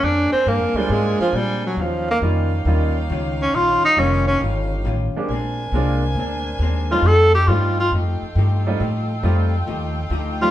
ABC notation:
X:1
M:4/4
L:1/8
Q:"Swing" 1/4=137
K:Bb
V:1 name="Saxophone section"
[DBc_a]8 | [EG_df]8- | [EG_df]8 | [DBc_a]8 |
[FAeg]8- | [FAeg]8 |]
V:2 name="Tenor saxophone"
D C B, G, _A, F, G, _G, | F, B, z4 z _D | F E _D D z4 | z6 z F |
A G F F z4 | z6 z F |]
V:3 name="Grand piano"
z3 [_A,B,CDF]3 z2 | z2 [G,B,_DEF] z [G,B,DEF] z3 | z2 [G,B,_DEF] z4 [_A,B,C=DG] | z2 [_A,B,CDF] z4 [G,=A,CEF] |
z2 [G,A,CEF] z4 [G,A,CEF] | z2 [G,A,CEF] z4 [G,A,CEG] |]
V:4 name="Hollow-body jazz guitar"
[B,,_A,CD] z [B,,A,CD] z [B,,A,CD] z [B,,A,CD] z | [E,G,_DF] z [E,G,DF] z [E,G,DF] z [E,G,DF] z | [E,G,_DF] z [E,G,DF] z [E,G,DF] z [E,G,DF] z | [B,,_A,CD] z [B,,A,CD] z [B,,A,CD] z [B,,A,CD] z |
[F,A,EG] z [F,A,EG] z [F,A,EG] z [F,A,EG] z | [F,A,EG] z [F,A,EG] z [F,A,EG] z [F,A,EG] z |]
V:5 name="Upright bass" clef=bass
F,, z (3G,, F,, D,, _A,, z B,,2 | E,,2 F,,2 E,,2 _D,,2 | B,,, z F,,,2 G,,,2 A,,, z | B,,,2 C,,2 D,,2 E,,2 |
F,,2 G,,2 F,, z G,,2 | A,,2 F,,2 E,,2 D,,2 |]